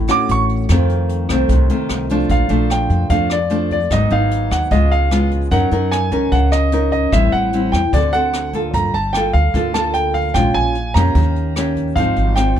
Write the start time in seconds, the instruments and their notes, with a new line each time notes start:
Already playing: nylon-string guitar A2
0.08 nylon-string guitar A3 C#4 F#4, grand piano D6, cross-stick, closed hi-hat
0.29 upright bass A1, grand piano C#6, closed hi-hat
0.49 closed hi-hat
0.69 upright bass F2, nylon-string guitar F2 D#3 A3 C4, kick, cross-stick, closed hi-hat
0.89 closed hi-hat
1.09 closed hi-hat
1.29 upright bass C2, nylon-string guitar D#3 A3 C4, cross-stick, closed hi-hat
1.49 upright bass C2, nylon-string guitar C3, kick, closed hi-hat
1.69 nylon-string guitar D#3 A3 C4, closed hi-hat
1.89 upright bass C2, cross-stick, closed hi-hat
2.09 nylon-string guitar F3 A3 D4, closed hi-hat
2.29 upright bass A#1, nylon-string guitar A#2, grand piano F5, kick, closed hi-hat
2.49 upright bass A#1, nylon-string guitar F3 A3 D4, closed hi-hat
2.70 grand piano G5, cross-stick, closed hi-hat
2.90 upright bass F2, kick, closed hi-hat
3.10 upright bass F2, nylon-string guitar F2 F3 A3 D4, grand piano F5, kick, closed hi-hat
3.30 grand piano D5, cross-stick, closed hi-hat
3.50 nylon-string guitar F3 A3 D4, closed hi-hat
3.71 grand piano D5, kick, closed hi-hat
3.91 upright bass G#1, nylon-string guitar G#2 F#3 B3 D#4, grand piano D#5, kick, cross-stick, closed hi-hat
4.10 upright bass G#1, nylon-string guitar F#3 B3 D#4, grand piano F5, closed hi-hat
4.31 closed hi-hat
4.51 upright bass D#2, grand piano F#5, kick, cross-stick, closed hi-hat
4.71 upright bass C#2, nylon-string guitar C#3 G#3 B3 F4, grand piano D#5, kick, closed hi-hat
4.92 grand piano F5, closed hi-hat
5.11 nylon-string guitar G#3 B3 F4, cross-stick, closed hi-hat
5.31 kick, closed hi-hat
5.51 upright bass F#2, nylon-string guitar F#3 C#4 D#4 A#4, grand piano F#5, kick, closed hi-hat
5.71 upright bass F#2, nylon-string guitar C#4 D#4 A#4, closed hi-hat
5.91 grand piano G#5, cross-stick, closed hi-hat
6.12 upright bass C#2, nylon-string guitar C#4 D#4 A#4, kick, closed hi-hat
6.32 upright bass C#2, nylon-string guitar C#3, grand piano F#5, kick, closed hi-hat
6.52 grand piano D#5, cross-stick, closed hi-hat
6.72 nylon-string guitar C#4 D#4 A#4, closed hi-hat
6.92 grand piano D#5, kick, closed hi-hat
7.12 upright bass A1, nylon-string guitar A2 G3 C4 E4, grand piano E5, kick, cross-stick, closed hi-hat
7.32 upright bass A1, grand piano F#5, closed hi-hat
7.53 nylon-string guitar G3 C4 E4, closed hi-hat
7.72 upright bass E2, grand piano G5, kick, cross-stick, closed hi-hat
7.93 upright bass D2, nylon-string guitar D3 C4 F#4 A4, grand piano D5, kick, closed hi-hat
8.13 nylon-string guitar C4 F#4 A4, grand piano F#5, closed hi-hat
8.33 cross-stick, closed hi-hat
8.53 nylon-string guitar A#3 F4 A4, kick, closed hi-hat
8.74 upright bass G1, nylon-string guitar G3, grand piano A#5, kick, closed hi-hat
8.94 upright bass G1, grand piano A5, closed hi-hat
9.13 nylon-string guitar A#3 F4 A4, grand piano G5, cross-stick, closed hi-hat
9.33 upright bass D2, grand piano F5, kick, closed hi-hat
9.54 upright bass D2, nylon-string guitar D3 A#3 F4 A4, kick, closed hi-hat
9.74 nylon-string guitar A#3 F4 A4, grand piano A5, cross-stick, closed hi-hat
9.94 grand piano G5, closed hi-hat
10.14 grand piano F5, kick, closed hi-hat
10.34 upright bass A#1, nylon-string guitar A#2 G#3 C#4 F4, grand piano G5, kick, cross-stick, closed hi-hat
10.54 upright bass A#1, grand piano G#5, closed hi-hat
10.75 closed hi-hat
10.94 upright bass F2, nylon-string guitar A#3 C#4 G4, grand piano A#5, kick, cross-stick, closed hi-hat
11.15 upright bass D#2, nylon-string guitar D#3, kick, closed hi-hat
11.36 closed hi-hat
11.56 nylon-string guitar A#3 C#4 G4, cross-stick, closed hi-hat
11.76 kick, closed hi-hat
11.96 upright bass G#1, nylon-string guitar G#2 F3 C4 D#4, grand piano F5, kick, closed hi-hat
12.16 upright bass G#1, closed hi-hat
12.36 nylon-string guitar F3 C4 D#4, grand piano G5, cross-stick, closed hi-hat
12.56 upright bass D#2, kick